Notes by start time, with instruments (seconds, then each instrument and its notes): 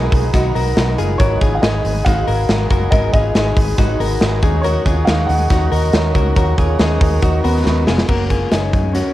Already playing: twelve-string acoustic guitar F#3 B3 D#4 A#4, clean electric guitar D#4 G#4, transistor combo organ D#4 F#4 A#4 B4, vibraphone A#4, upright piano A#5
0.11 fingered electric bass B1, twelve-string acoustic guitar F#3 B3 D#4 A#4, vibraphone G#4, kick, hi-hat pedal, open hi-hat
0.33 fingered electric bass B1, twelve-string acoustic guitar B2 D#3 F#3 B3 D#4 A#4, clean electric guitar D#4 F#4, vibraphone F#4, kick, snare, hi-hat pedal, open hi-hat
0.54 fingered electric bass B1, twelve-string acoustic guitar F#3 B3 D#4 A#4, clean electric guitar F#4 A#4, vibraphone A#4, hi-hat pedal, open hi-hat
0.76 fingered electric bass B1, twelve-string acoustic guitar F#3 B3 D#4 A#4, vibraphone D#5, snare, hi-hat pedal, open hi-hat
0.98 fingered electric bass F#1, twelve-string acoustic guitar F#3 B3 D#4 A#4, clean electric guitar F4 G#4, hi-hat pedal, open hi-hat
1.18 fingered electric bass G#1, twelve-string acoustic guitar G#2 D#3 F#3 B3 D#4 G#4, transistor combo organ D#4 F#4 G#4 B4, clean electric guitar F#4 A#4, upright piano C#5, kick, hi-hat pedal, open hi-hat
1.41 fingered electric bass G#1, twelve-string acoustic guitar F#3 B3 D#4 G#4, clean electric guitar F4 G#4, kick, hi-hat pedal, open hi-hat
1.55 upright piano F5
1.62 fingered electric bass G#1, twelve-string acoustic guitar F#3 D#4 G#4, clean electric guitar D#4 G#4, upright piano D#5, snare, hi-hat pedal, open hi-hat
1.84 fingered electric bass G#1, twelve-string acoustic guitar F#3 B3 D#4 G#4, hi-hat pedal, open hi-hat
2.04 fingered electric bass G#1, twelve-string acoustic guitar G#2 D#3 F#3 B3 D#4 G#4, clean electric guitar D#4 F#4, upright piano F5, kick, snare, hi-hat pedal, open hi-hat
2.27 fingered electric bass G#1, twelve-string acoustic guitar F#3 B3 D#4 G#4, clean electric guitar F#4 A#4, hi-hat pedal, open hi-hat
2.48 fingered electric bass G#1, twelve-string acoustic guitar F#3 B3 D#4 G#4, snare, hi-hat pedal, open hi-hat
2.70 fingered electric bass F#1, twelve-string acoustic guitar F#3 B3 D#4 G#4, clean electric guitar F#4 A#4, kick, hi-hat pedal, open hi-hat
2.90 fingered electric bass G#1, twelve-string acoustic guitar G#2 D#3 F#3 B3 D#4 G#4, clean electric guitar F#4 A#4, upright piano D#5, kick, hi-hat pedal, open hi-hat
3.13 fingered electric bass G#1, twelve-string acoustic guitar F#3 B3 D#4 G#4, clean electric guitar F4 G#4, upright piano D#5, kick, hi-hat pedal, open hi-hat
3.34 fingered electric bass G#1, twelve-string acoustic guitar F#3 B3 D#4 G#4, clean electric guitar D#4 G#4, snare, hi-hat pedal, open hi-hat
3.55 fingered electric bass G#1, twelve-string acoustic guitar F#3 B3 D#4 G#4, kick, hi-hat pedal, open hi-hat
3.77 fingered electric bass G#1, twelve-string acoustic guitar G#2 D#3 F#3 B3 D#4 G#4, clean electric guitar D#4 F#4, kick, snare, hi-hat pedal, open hi-hat
3.99 fingered electric bass G#1, twelve-string acoustic guitar F#3 B3 D#4 G#4, clean electric guitar F#4 A#4, hi-hat pedal, open hi-hat
4.21 fingered electric bass G#1, twelve-string acoustic guitar F#3 B3 D#4 G#4, snare, hi-hat pedal, open hi-hat
4.42 fingered electric bass D#2, twelve-string acoustic guitar C#4 D#4 A#4, transistor combo organ D#4 F#4 A#4 C#5, clean electric guitar D#4 G#4, kick, hi-hat pedal, open hi-hat
4.62 twelve-string acoustic guitar D#3 F#3 C#4 D#4 A#4, clean electric guitar F#4 A#4, upright piano C#5, hi-hat pedal, open hi-hat
4.85 fingered electric bass D#2, twelve-string acoustic guitar C#4 D#4 A#4, clean electric guitar F4 G#4, kick, hi-hat pedal, open hi-hat
5.05 fingered electric bass D#2, twelve-string acoustic guitar F#3 C#4 D#4 A#4, clean electric guitar D#4 G#4, upright piano F5, snare, hi-hat pedal, open hi-hat
5.26 fingered electric bass D#2, twelve-string acoustic guitar C#4 D#4 A#4, upright piano F#5, hi-hat pedal, open hi-hat
5.50 fingered electric bass D#2, twelve-string acoustic guitar D#3 F#3 C#4 D#4 A#4, clean electric guitar D#4 F#4, kick, snare, hi-hat pedal, open hi-hat
5.71 fingered electric bass D#2, twelve-string acoustic guitar C#4 D#4 A#4, clean electric guitar F#4 A#4, vibraphone D#5, hi-hat pedal, open hi-hat
5.93 fingered electric bass D#2, twelve-string acoustic guitar F#3 C#4 D#4 A#4, vibraphone C#5, snare, hi-hat pedal, open hi-hat
6.14 fingered electric bass C#2, twelve-string acoustic guitar C#4 D#4 A#4, clean electric guitar F#4 A#4, kick, hi-hat pedal, open hi-hat
6.35 fingered electric bass D#2, twelve-string acoustic guitar D#3 F#3 C#4 D#4 A#4, clean electric guitar F#4 A#4, vibraphone C#5, kick, hi-hat pedal, open hi-hat
6.57 fingered electric bass D#2, twelve-string acoustic guitar C#4 D#4 A#4, clean electric guitar F4 G#4, kick, hi-hat pedal, open hi-hat
6.78 fingered electric bass D#2, twelve-string acoustic guitar F#3 C#4 D#4 A#4, clean electric guitar D#4 G#4, vibraphone A#4, snare, hi-hat pedal, open hi-hat
7.01 fingered electric bass D#2, twelve-string acoustic guitar C#4 D#4 A#4, kick, hi-hat pedal, open hi-hat
7.22 fingered electric bass D#2, twelve-string acoustic guitar D#3 F#3 C#4 D#4 A#4, clean electric guitar D#4 F#4, kick, hi-hat pedal, open hi-hat
7.44 fingered electric bass D#2, upright piano B3, twelve-string acoustic guitar C#4 D#4 A#4, clean electric guitar F#4 A#4, hi-hat pedal, open hi-hat
7.65 fingered electric bass D#2, twelve-string acoustic guitar F#3 C#4 D#4 A#4, upright piano B3, snare
7.86 fingered electric bass F1, twelve-string acoustic guitar C#4 D#4 A#4, clean electric guitar F4 G#4, snare
7.98 snare
8.08 fingered electric bass F#1, twelve-string acoustic guitar F#3 C#4 F#4 A#4, upright piano A#3, clean electric guitar F#4 A#4, kick, crash
8.29 twelve-string acoustic guitar C#4 F#4 A#4, clean electric guitar F4 G#4, kick, closed hi-hat
8.51 fingered electric bass F#1, twelve-string acoustic guitar F#3 C#4 F#4 A#4, clean electric guitar C#4 G#4, upright piano D#4, snare, closed hi-hat
8.72 fingered electric bass F#2, twelve-string acoustic guitar C#4 F#4 A#4, kick, closed hi-hat
8.93 twelve-string acoustic guitar F#3 C#4 F#4 A#4, upright piano C#4, clean electric guitar C#4 F#4, snare, closed hi-hat